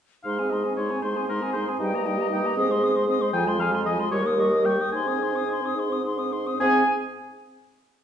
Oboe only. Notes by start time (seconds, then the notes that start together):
0.24 F5
0.50 D#5
0.76 C#5
1.02 C5
1.29 A#4
1.53 C5
1.81 D#5
3.33 G5
3.59 F5
3.86 D#5
4.11 C#5
4.39 D#5
4.65 G5
4.92 G#5
6.60 G#5